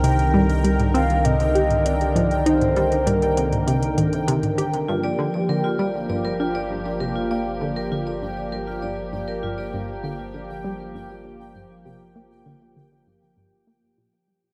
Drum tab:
HH |xx-xxxxxxxxxxxxx|xxxxxxxxxxxxxxxx|----------------|----------------|
T1 |--o--o--o--o--o-|-o--o--o--o--o--|----------------|----------------|

HH |----------------|----------------|
T1 |----------------|----------------|